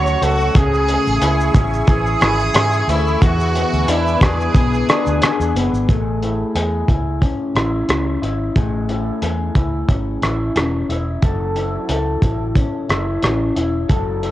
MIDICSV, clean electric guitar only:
0, 0, Header, 1, 2, 480
1, 0, Start_track
1, 0, Key_signature, 3, "major"
1, 0, Tempo, 667408
1, 396, Time_signature, 4, 2, 24, 8
1, 10292, End_track
2, 0, Start_track
2, 0, Title_t, "Clean electric guitar"
2, 0, Program_c, 0, 27
2, 0, Note_on_c, 0, 54, 74
2, 0, Note_on_c, 0, 57, 66
2, 0, Note_on_c, 0, 61, 66
2, 0, Note_on_c, 0, 66, 69
2, 154, Note_off_c, 0, 57, 0
2, 157, Note_on_c, 0, 57, 61
2, 396, Note_off_c, 0, 66, 0
2, 400, Note_on_c, 0, 49, 89
2, 405, Note_on_c, 0, 68, 87
2, 448, Note_off_c, 0, 54, 0
2, 872, Note_off_c, 0, 61, 0
2, 875, Note_on_c, 0, 64, 66
2, 1115, Note_off_c, 0, 68, 0
2, 1118, Note_on_c, 0, 68, 68
2, 1140, Note_off_c, 0, 57, 0
2, 1357, Note_on_c, 0, 52, 69
2, 1591, Note_off_c, 0, 64, 0
2, 1594, Note_on_c, 0, 64, 64
2, 1833, Note_off_c, 0, 68, 0
2, 1836, Note_on_c, 0, 68, 70
2, 2073, Note_on_c, 0, 57, 58
2, 2310, Note_off_c, 0, 49, 0
2, 2313, Note_off_c, 0, 52, 0
2, 2313, Note_on_c, 0, 52, 82
2, 2316, Note_off_c, 0, 64, 0
2, 2319, Note_off_c, 0, 68, 0
2, 2319, Note_on_c, 0, 68, 78
2, 2366, Note_off_c, 0, 57, 0
2, 2553, Note_on_c, 0, 59, 62
2, 2794, Note_on_c, 0, 62, 57
2, 3028, Note_off_c, 0, 68, 0
2, 3031, Note_on_c, 0, 68, 62
2, 3260, Note_off_c, 0, 59, 0
2, 3269, Note_on_c, 0, 59, 72
2, 3504, Note_off_c, 0, 62, 0
2, 3513, Note_on_c, 0, 62, 65
2, 3750, Note_off_c, 0, 68, 0
2, 3753, Note_on_c, 0, 68, 71
2, 3991, Note_off_c, 0, 59, 0
2, 3998, Note_on_c, 0, 59, 60
2, 4232, Note_off_c, 0, 52, 0
2, 4235, Note_on_c, 0, 57, 77
2, 4236, Note_off_c, 0, 68, 0
2, 4239, Note_on_c, 0, 68, 60
2, 4286, Note_off_c, 0, 62, 0
2, 4288, Note_off_c, 0, 59, 0
2, 4478, Note_on_c, 0, 64, 53
2, 4705, Note_off_c, 0, 68, 0
2, 4714, Note_on_c, 0, 68, 59
2, 4948, Note_off_c, 0, 64, 0
2, 4951, Note_on_c, 0, 64, 53
2, 5190, Note_on_c, 0, 61, 61
2, 5430, Note_off_c, 0, 64, 0
2, 5433, Note_on_c, 0, 64, 56
2, 5672, Note_off_c, 0, 61, 0
2, 5675, Note_on_c, 0, 61, 56
2, 5909, Note_off_c, 0, 64, 0
2, 5912, Note_on_c, 0, 64, 57
2, 6149, Note_off_c, 0, 68, 0
2, 6151, Note_off_c, 0, 57, 0
2, 6154, Note_on_c, 0, 57, 74
2, 6157, Note_on_c, 0, 68, 67
2, 6393, Note_off_c, 0, 64, 0
2, 6396, Note_on_c, 0, 64, 55
2, 6625, Note_off_c, 0, 68, 0
2, 6634, Note_on_c, 0, 68, 56
2, 6875, Note_off_c, 0, 64, 0
2, 6878, Note_on_c, 0, 64, 54
2, 7115, Note_off_c, 0, 61, 0
2, 7118, Note_on_c, 0, 61, 58
2, 7358, Note_off_c, 0, 64, 0
2, 7360, Note_on_c, 0, 64, 51
2, 7600, Note_off_c, 0, 61, 0
2, 7603, Note_on_c, 0, 61, 57
2, 7832, Note_off_c, 0, 64, 0
2, 7835, Note_on_c, 0, 64, 55
2, 8071, Note_off_c, 0, 57, 0
2, 8074, Note_on_c, 0, 54, 77
2, 8075, Note_off_c, 0, 68, 0
2, 8079, Note_on_c, 0, 69, 67
2, 8313, Note_off_c, 0, 64, 0
2, 8316, Note_on_c, 0, 64, 61
2, 8553, Note_off_c, 0, 69, 0
2, 8555, Note_on_c, 0, 69, 57
2, 8794, Note_off_c, 0, 64, 0
2, 8796, Note_on_c, 0, 64, 60
2, 9032, Note_off_c, 0, 61, 0
2, 9035, Note_on_c, 0, 61, 63
2, 9269, Note_off_c, 0, 64, 0
2, 9272, Note_on_c, 0, 64, 56
2, 9511, Note_off_c, 0, 61, 0
2, 9514, Note_on_c, 0, 61, 56
2, 9749, Note_off_c, 0, 64, 0
2, 9751, Note_on_c, 0, 64, 57
2, 9986, Note_off_c, 0, 54, 0
2, 9989, Note_on_c, 0, 54, 84
2, 9993, Note_off_c, 0, 69, 0
2, 9996, Note_on_c, 0, 69, 66
2, 10228, Note_off_c, 0, 64, 0
2, 10230, Note_on_c, 0, 64, 55
2, 10292, Note_off_c, 0, 54, 0
2, 10292, Note_off_c, 0, 61, 0
2, 10292, Note_off_c, 0, 64, 0
2, 10292, Note_off_c, 0, 69, 0
2, 10292, End_track
0, 0, End_of_file